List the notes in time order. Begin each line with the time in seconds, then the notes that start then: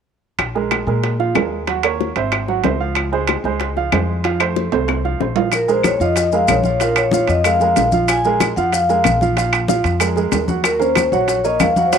0.39 A#1, high bongo, high timbale, claves
0.55 G#3 G#4 A#4, high bongo
0.71 high bongo, high timbale, claves
0.87 A#2 G#3 G#4 A#4, high bongo
1.04 high bongo, high timbale
1.19 F3 F4 F5, high bongo
1.35 D#2 G#3 G#4 A#4, high bongo, low bongo, high timbale, low timbale, claves
1.67 F#3 F#4 F#5, high bongo, high timbale
1.83 A#3 A#4 C#5, high bongo, high timbale, claves
2.01 high bongo
2.16 G#1 C4 C5 E5, high bongo, high timbale
2.32 high bongo, high timbale, claves
2.48 F#3 F#4 F#5, high bongo
2.63 C#2 C4 C5 E5, high bongo, low bongo, high timbale, low timbale
2.80 F3 F4 F5
2.95 high bongo, high timbale, claves
3.12 G#3 G#4 C5, high bongo
3.27 high bongo, high timbale, claves
3.44 C#2 G#3 G#4 C5, high bongo
3.60 high bongo, high timbale
3.77 F3 F4 F5, high bongo
3.92 F2 G#3 G#4 C5, high bongo, low bongo, high timbale, low timbale, claves
4.24 F3 F4 F5, high bongo, high timbale
4.40 A3 A4 C5, high bongo, high timbale, claves
4.56 high bongo
4.72 C2 A3 A4 C5, high bongo, high timbale
4.88 high bongo, high timbale, claves
5.04 F3 F4 F5, high bongo
5.20 A#1 A3 A4 C5, high bongo, low bongo
5.36 F3 F4 F5, low timbale
5.52 A#4, high bongo, high conga, high timbale, claves, maracas
5.68 G#3 G#4 A#4 C5, high bongo, high conga, maracas
5.83 C#5, high bongo, high conga, high timbale, claves, maracas
6.00 F2 F3 F4 D#5 F5, high bongo, high conga, maracas
6.16 high bongo, high conga, high timbale, maracas
6.32 G#3 G#4 A#4 F5, high bongo, high conga, maracas
6.48 A#1 C#5, high bongo, low bongo, high conga, high timbale, low timbale, claves, maracas
6.63 F3 F4 F5, high conga, maracas
6.80 F3 F4 A#4 F5, high bongo, high conga, high timbale, maracas
6.96 C#5, high bongo, high conga, high timbale, claves, maracas
7.11 F3 F4 F5, high bongo, high conga, maracas
7.28 F2 D#5, high bongo, high conga, high timbale, maracas
7.44 G#3 G#4 A#4 F5, high bongo, high conga, high timbale, claves, maracas
7.60 G#3 G#4 A#4, high bongo, high conga, maracas
7.76 A#1, high bongo, low bongo, high conga, high timbale, low timbale, maracas
7.92 F3 F4 F5, high conga, maracas
8.08 G#5, high bongo, high conga, high timbale, claves, maracas
8.24 G#3 G#4 A#4, high bongo, high conga, maracas
8.40 high bongo, high conga, high timbale, claves, maracas
8.56 F2 F3 F4 F5 F#5, high bongo, high conga, maracas
8.72 F5, high bongo, high conga, high timbale, maracas
8.89 G#3 G#4 A#4, high bongo, high conga, maracas
9.04 A#1, high bongo, low bongo, high conga, high timbale, claves, maracas
9.21 F3 F4 F5, high conga, maracas
9.37 F3 F4 F5, high bongo, high conga, high timbale, maracas
9.53 high bongo, high conga, high timbale, claves, maracas
9.68 F3 F4 F5, high bongo, high conga, maracas
9.84 F2, high bongo, high conga, high timbale, maracas
10.00 G#3 G#4 A#4, high bongo, high conga, high timbale, claves, maracas
10.16 G#3 G#4 A#4, high bongo, high conga, maracas
10.32 D#2, high bongo, low bongo, high conga, high timbale, low timbale, maracas
10.48 F#3 F#4 F#5, high conga, maracas
10.64 A#4, high bongo, high conga, high timbale, claves, maracas
10.79 A#3 C#4 A#4 C5, high bongo, high conga, maracas
10.95 high bongo, high conga, high timbale, claves, maracas
11.12 A#1 F#3 F#4 C#5 F#5, high bongo, high conga, maracas
11.28 high bongo, high conga, high timbale, maracas
11.44 A#3 A#4 C#5 D#5, high bongo, high conga, maracas
11.60 D#2 F5, high bongo, low bongo, high conga, high timbale, low timbale, claves, maracas
11.76 F#3 F#4 F#5, high conga, maracas
11.85 C5
11.93 F#3 F#4 C#5 F#5, high bongo, high conga, high timbale, maracas